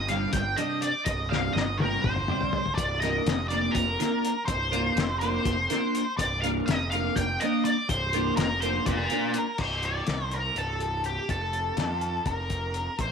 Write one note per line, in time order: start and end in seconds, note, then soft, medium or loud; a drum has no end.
0.00 0.26 G1 medium
0.08 0.42 G2 medium
0.08 0.42 C3 medium
0.08 0.41 G3 medium
0.08 0.41 D4 medium
0.08 0.33 F5 loud
0.08 snare soft
0.08 closed hi-hat medium
0.33 0.54 G1 medium
0.33 0.59 G5 medium
0.33 kick loud
0.33 snare soft
0.33 closed hi-hat medium
0.56 0.91 G2 medium
0.56 0.90 C3 medium
0.56 0.90 G3 medium
0.56 0.90 D4 loud
0.56 0.82 D#5 medium
0.56 closed hi-hat medium
0.82 1.05 D5 loud
0.82 closed hi-hat medium
1.05 1.48 C1 loud
1.05 1.29 D#5 medium
1.05 kick loud
1.05 closed hi-hat medium
1.29 1.64 G2 medium
1.29 1.64 C3 medium
1.29 1.63 G3 medium
1.29 1.63 D4 medium
1.29 1.53 F5 medium
1.29 snare medium
1.53 1.96 G1 medium
1.53 1.80 D#5 medium
1.53 snare medium
1.78 2.12 D4 medium
1.78 2.04 A#4 medium
1.78 high tom medium
1.82 2.13 G2 medium
1.82 2.13 C3 medium
1.82 2.13 G3 medium
2.02 2.25 G1 medium
2.02 2.73 C5 medium
2.02 kick loud
2.02 mid tom medium
2.16 mid tom medium
2.28 2.62 G2 medium
2.28 2.61 C3 medium
2.28 2.61 G3 medium
2.28 2.61 D4 medium
2.28 mid tom medium
2.41 floor tom medium
2.53 floor tom medium
2.66 floor tom medium
2.75 3.19 C1 medium
2.75 3.00 D5 medium
2.75 kick loud
2.75 closed hi-hat medium
3.00 3.35 A#3 medium
3.00 3.35 D4 medium
3.00 3.35 F4 loud
3.00 3.34 A#4 medium
3.00 3.48 D#5 loud
3.00 snare soft
3.00 closed hi-hat medium
3.26 3.68 F1 medium
3.26 snare loud
3.26 closed hi-hat medium
3.48 3.83 D4 medium
3.48 3.83 F4 medium
3.48 3.83 A#4 medium
3.48 3.75 D5 medium
3.48 closed hi-hat medium
3.52 3.83 A#3 medium
3.72 3.96 F1 medium
3.72 4.43 A#4 medium
3.72 kick medium
3.72 closed hi-hat medium
3.99 4.32 A#3 medium
3.99 4.32 D4 medium
3.99 4.32 F4 medium
3.99 4.31 A#4 medium
3.99 snare soft
3.99 closed hi-hat medium
4.25 closed hi-hat medium
4.46 4.89 C1 medium
4.46 5.18 C5 medium
4.46 kick loud
4.46 closed hi-hat medium
4.72 5.05 A#3 medium
4.72 5.05 D4 medium
4.72 5.04 F4 loud
4.72 5.04 A#4 medium
4.72 closed hi-hat medium
4.96 5.38 F1 medium
4.96 snare loud
4.96 closed hi-hat medium
5.19 5.54 A#3 medium
5.19 5.54 D4 medium
5.19 5.54 F4 medium
5.19 5.53 A#4 medium
5.19 6.14 C5 medium
5.19 closed hi-hat medium
5.45 5.66 F1 medium
5.45 kick loud
5.45 closed hi-hat medium
5.70 6.03 A#3 medium
5.70 6.02 D4 medium
5.70 6.02 F4 medium
5.70 6.02 A#4 medium
5.70 snare soft
5.70 closed hi-hat medium
5.95 closed hi-hat medium
6.17 6.60 C1 loud
6.17 6.41 D5 medium
6.17 kick loud
6.17 closed hi-hat loud
6.41 6.76 A#3 medium
6.41 6.75 D4 medium
6.41 6.75 F4 medium
6.41 6.75 A#4 medium
6.41 6.48 F5 medium
6.41 closed hi-hat medium
6.66 7.09 F1 medium
6.66 6.89 D#5 medium
6.66 snare medium
6.66 closed hi-hat medium
6.91 7.24 A#3 medium
6.91 7.24 D4 medium
6.91 7.24 F4 medium
6.91 7.24 A#4 medium
6.91 7.16 F5 medium
6.91 closed hi-hat medium
7.16 7.37 F1 medium
7.16 7.41 G5 medium
7.16 kick loud
7.16 closed hi-hat medium
7.40 7.73 A#3 medium
7.40 7.73 D4 medium
7.40 7.73 F4 medium
7.40 7.73 A#4 loud
7.40 7.64 D#5 medium
7.40 closed hi-hat medium
7.65 7.87 D5 medium
7.65 closed hi-hat medium
7.89 8.30 C1 loud
7.89 8.36 C5 medium
7.89 kick loud
7.89 closed hi-hat medium
8.13 8.46 A#3 medium
8.13 8.46 D4 medium
8.13 8.46 F4 medium
8.13 8.45 A#4 loud
8.13 closed hi-hat medium
8.36 8.79 F1 medium
8.36 8.61 A#4 medium
8.36 snare medium
8.36 closed hi-hat medium
8.61 8.95 A#3 medium
8.61 8.95 D4 medium
8.61 8.94 F4 medium
8.61 8.94 A#4 medium
8.61 8.84 C5 medium
8.61 closed hi-hat medium
8.86 9.07 F1 medium
8.86 9.61 A#4 medium
8.86 9.37 D5 medium
8.86 kick loud
8.86 closed hi-hat medium
9.10 9.43 A#3 medium
9.10 9.43 D4 medium
9.10 9.43 F4 medium
9.10 9.43 A#4 medium
9.10 closed hi-hat medium
9.34 closed hi-hat medium
9.58 10.00 C1 medium
9.58 9.83 C5 medium
9.58 kick loud
9.58 crash medium
9.83 10.34 D5 medium
9.83 closed hi-hat medium
10.07 10.49 C2 medium
10.07 snare loud
10.07 closed hi-hat medium
10.31 10.58 A#4 medium
10.31 closed hi-hat medium
10.56 11.18 C1 medium
10.56 11.03 A4 medium
10.56 closed hi-hat medium
10.80 closed hi-hat soft
11.04 11.28 G4 medium
11.04 closed hi-hat medium
11.29 11.70 F1 loud
11.29 12.23 A4 medium
11.29 kick loud
11.29 closed hi-hat medium
11.53 closed hi-hat medium
11.77 12.19 F2 medium
11.77 snare medium
11.77 closed hi-hat medium
12.01 closed hi-hat soft
12.25 12.88 F1 medium
12.25 12.96 A#4 medium
12.25 kick medium
12.25 closed hi-hat medium
12.50 kick medium
12.50 closed hi-hat medium
12.74 closed hi-hat medium
12.99 13.12 A1 loud
12.99 13.12 C5 medium
12.99 kick loud
12.99 closed hi-hat medium